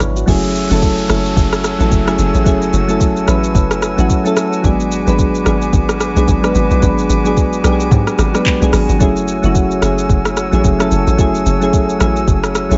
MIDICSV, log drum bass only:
0, 0, Header, 1, 2, 480
1, 0, Start_track
1, 0, Key_signature, 3, "minor"
1, 0, Tempo, 545455
1, 245, Time_signature, 4, 2, 24, 8
1, 11245, End_track
2, 0, Start_track
2, 0, Title_t, "Log drum bass"
2, 0, Program_c, 0, 39
2, 244, Note_on_c, 0, 30, 114
2, 610, Note_off_c, 0, 30, 0
2, 624, Note_on_c, 0, 30, 109
2, 953, Note_off_c, 0, 30, 0
2, 965, Note_on_c, 0, 30, 109
2, 1196, Note_off_c, 0, 30, 0
2, 1202, Note_on_c, 0, 30, 106
2, 1569, Note_off_c, 0, 30, 0
2, 1584, Note_on_c, 0, 33, 88
2, 1681, Note_off_c, 0, 33, 0
2, 1686, Note_on_c, 0, 30, 96
2, 1917, Note_off_c, 0, 30, 0
2, 1925, Note_on_c, 0, 30, 95
2, 2059, Note_off_c, 0, 30, 0
2, 2064, Note_on_c, 0, 33, 96
2, 2165, Note_on_c, 0, 30, 112
2, 2178, Note_off_c, 0, 33, 0
2, 2396, Note_off_c, 0, 30, 0
2, 2404, Note_on_c, 0, 30, 102
2, 2868, Note_off_c, 0, 30, 0
2, 2885, Note_on_c, 0, 33, 97
2, 3117, Note_off_c, 0, 33, 0
2, 3123, Note_on_c, 0, 30, 107
2, 3490, Note_off_c, 0, 30, 0
2, 3504, Note_on_c, 0, 33, 94
2, 3601, Note_off_c, 0, 33, 0
2, 4085, Note_on_c, 0, 32, 110
2, 4451, Note_off_c, 0, 32, 0
2, 4464, Note_on_c, 0, 32, 105
2, 4793, Note_off_c, 0, 32, 0
2, 4805, Note_on_c, 0, 32, 105
2, 5037, Note_off_c, 0, 32, 0
2, 5043, Note_on_c, 0, 32, 103
2, 5410, Note_off_c, 0, 32, 0
2, 5424, Note_on_c, 0, 35, 93
2, 5521, Note_off_c, 0, 35, 0
2, 5527, Note_on_c, 0, 32, 95
2, 5757, Note_off_c, 0, 32, 0
2, 5764, Note_on_c, 0, 32, 101
2, 5899, Note_off_c, 0, 32, 0
2, 5904, Note_on_c, 0, 35, 94
2, 6001, Note_off_c, 0, 35, 0
2, 6005, Note_on_c, 0, 32, 124
2, 6236, Note_off_c, 0, 32, 0
2, 6244, Note_on_c, 0, 32, 103
2, 6707, Note_off_c, 0, 32, 0
2, 6724, Note_on_c, 0, 35, 92
2, 6956, Note_off_c, 0, 35, 0
2, 6963, Note_on_c, 0, 44, 107
2, 7098, Note_off_c, 0, 44, 0
2, 7203, Note_on_c, 0, 32, 106
2, 7338, Note_off_c, 0, 32, 0
2, 7583, Note_on_c, 0, 35, 89
2, 7681, Note_off_c, 0, 35, 0
2, 7685, Note_on_c, 0, 32, 98
2, 7819, Note_off_c, 0, 32, 0
2, 7825, Note_on_c, 0, 32, 97
2, 7924, Note_on_c, 0, 30, 111
2, 7938, Note_off_c, 0, 32, 0
2, 8291, Note_off_c, 0, 30, 0
2, 8304, Note_on_c, 0, 30, 108
2, 8633, Note_off_c, 0, 30, 0
2, 8645, Note_on_c, 0, 30, 108
2, 8876, Note_off_c, 0, 30, 0
2, 8883, Note_on_c, 0, 30, 100
2, 9250, Note_off_c, 0, 30, 0
2, 9264, Note_on_c, 0, 33, 91
2, 9361, Note_off_c, 0, 33, 0
2, 9366, Note_on_c, 0, 30, 101
2, 9597, Note_off_c, 0, 30, 0
2, 9605, Note_on_c, 0, 30, 94
2, 9737, Note_off_c, 0, 30, 0
2, 9743, Note_on_c, 0, 33, 98
2, 9844, Note_on_c, 0, 30, 109
2, 9858, Note_off_c, 0, 33, 0
2, 10076, Note_off_c, 0, 30, 0
2, 10085, Note_on_c, 0, 30, 106
2, 10548, Note_off_c, 0, 30, 0
2, 10566, Note_on_c, 0, 33, 96
2, 10797, Note_off_c, 0, 33, 0
2, 10803, Note_on_c, 0, 30, 111
2, 11170, Note_off_c, 0, 30, 0
2, 11185, Note_on_c, 0, 33, 93
2, 11245, Note_off_c, 0, 33, 0
2, 11245, End_track
0, 0, End_of_file